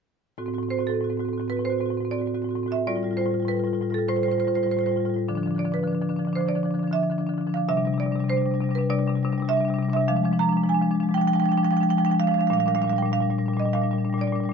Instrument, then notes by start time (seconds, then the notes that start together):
marimba
0.38 A2 C4 F#4
0.46 A2 C4 F#4
0.54 C4 F#4
0.58 A2
0.63 C4 F#4
0.69 A2 C4 F#4 C5
0.78 A2 C4 F#4
0.87 A2 C4 F#4 A4
0.94 C4 F#4
1.00 A2 C4 F#4
1.09 A2 C4 F#4
1.17 A2 C4 F#4
1.25 C4 F#4
1.29 A2
1.33 C4
1.38 A2 C4 F#4
1.45 C4 F#4
1.49 A2 F#4 B4
1.57 A2 C4
1.61 C4 F#4 C5
1.69 A2 C4 F#4
1.78 A2 C4 F#4
1.86 C4 F#4
1.90 A2 F#4
1.97 A2 C4
2.03 C4 F#4
2.11 A2 C4 F#4 D5
2.18 A2 C4 F#4
2.26 C4 F#4
2.34 A2 C4 F#4
2.42 A2 C4 F#4
2.49 C4 F#4
2.56 A2 C4 F#4
2.63 A2 C4
2.68 C4 F#4 E5
2.75 A2 F#4
2.87 A2 G3 F4 D5
2.95 A2 G3 F4
3.03 A2 G3 F4
3.11 G3 F4
3.16 A2 F4 C5
3.21 G3
3.26 A2 F4
3.31 G3 F4
3.35 A2
3.40 G3 F4
3.45 A2 G3 B4
3.51 A2 F4
3.57 G3 F4
3.64 A2 G3 F4
3.73 A2 G3 F4
3.81 A2 G3 F4
3.90 A2 G3 F4
3.94 A4
3.98 G3 F4
4.08 A2 G3 F4 C5
4.16 A2 G3 F4 C5
4.23 G3 F4 C5
4.29 A2 F4 C5
4.35 A2 G3
4.40 F4 C5
4.45 A2 G3 F4 C5
4.54 A2 G3 F4 C5
4.63 A2 G3 F4 C5
4.72 G3 F4 C5
4.77 A2 F4 C5
4.83 A2 G3 C5
4.89 G3 F4
4.96 A2 G3 F4
5.06 A2 G3 F4
5.14 A2 F4
5.18 G3
5.28 D3 F3 D4
5.35 D3 F3 D4
5.43 F3 D4
5.47 D3 D4
5.55 D3 F3 D4
5.59 D5
5.65 D3 F3 D4
5.72 D3 F3 D4 B4
5.79 F3 D4
5.84 D3 D4
5.91 D3 F3 D4
6.01 D3 F3 D4
6.09 D3 F3 D4
6.16 D3 F3 D4
6.25 D3 F3 D4
6.33 D3 D4 C5
6.39 F3 D4
6.46 D3 F3 D4 D5
6.55 D3 F3 D4
6.63 D3 F3 D4
6.71 D3 D4
6.75 F3
6.79 D3 D4
6.84 F3 D4
6.91 D3 F3 E5
6.96 D4
7.00 D3 F3 D4
7.10 D3 F3 D4
7.18 D3 F3 D4
7.27 D3 F3 D4
7.34 F3 D4
7.38 D3 D4
7.47 D3 F3 D4
7.54 D3 F3 D4 F5
7.69 C3 G3 D4 E5
7.77 C3 G3 D4
7.85 C3 G3 D4
7.92 G3 D4
7.98 C3 D5
8.02 G3 D4
8.06 C3
8.11 G3 D4
8.15 C3
8.19 G3 D4
8.24 C3
8.28 G3 D4 C5
8.33 C3
8.37 G3 D4
8.42 C3 D4
8.46 G3
8.51 C3 G3 D4
8.61 C3 G3 D4
8.69 C3 G3 D4
8.75 C3 D4 B4
8.81 G3
8.90 C3 G3 D4 D5
8.99 C3 G3 D4
9.07 C3 G3 D4
9.15 C3 G3 D4
9.23 C3 G3 D4
9.30 C3 G3 D4
9.38 G3 D4
9.42 C3 G3
9.48 C3 D4 E5
9.53 G3
9.57 C3 G3 D4
9.65 G3 D4
9.70 C3 D4
9.76 C3 G3
9.82 G3 D4
9.89 C3 G3 D4
9.93 C3 D4 E5
10.00 G3
10.08 F3 G#3 D4 F5
10.15 F3 G#3 D4
10.24 F3 G#3 D4
10.32 F3 G#3 D4
10.39 F3 G#3 D4 A#5
10.48 G#3 D4
10.52 F3
10.57 G#3 D4
10.63 F3 G#3 D4
10.69 F3 G#3 G#5
10.74 D4
10.79 F3 G#3 D4
10.87 G#3
10.91 F3 D4
10.95 G#3
11.00 F3 G#3 D4
11.09 F3 G#3 D4
11.14 F3 D4 G5
11.19 G#3 G5
11.25 F3 G#3 D4 G5
11.33 F3 G#3 D4 G5
11.40 G#3 D4 G5
11.44 F3 G5
11.49 G#3 D4 G5
11.53 F3
11.57 G#3 D4 G5
11.63 F3 G#3 D4 G5
11.71 F3 G#3 D4 G5
11.77 D4 G5
11.81 F3 G#3 G5
11.89 F3 G#3 D4 G5
11.97 F3 G#3 D4 G5
12.05 G#3 D4 G5
12.10 F3 G#3 G5
12.15 D4
12.20 F3 G#3 F5
12.24 D4 F5
12.28 F3 G#3 D4
12.34 F3 G#3 F5
12.39 G#3 D4 F5
12.47 A#2 G3 D4 F5
12.53 D4 F5
12.58 A#2 G3 F5
12.66 A#2 G3 D4 F5
12.74 A#2 G3 D4 F5
12.82 A#2 D4 F5
12.88 G3 D4 F5
12.93 A#2 G3
12.98 D4 G5
13.03 A#2 G3 D4
13.12 A#2 G3 D4 F5
13.21 A#2 G3 D4
13.30 A#2 G3 D4
13.38 A#2 G3 D4
13.46 A#2 G3 D4
13.53 A#2 G3 D4
13.60 D4 D#5
13.65 A#2 G3 D4
13.73 A#2 G3 D4 F5
13.82 A#2 G3 D4
13.91 A#2 G3 D4
13.98 G3 D4
14.04 A#2 D4
14.09 G3 D4
14.14 A#2
14.18 G3 D4 D5
14.23 A#2 G3 D4
14.32 A#2 G3 D4
14.40 A#2 D4
14.45 A#2 G3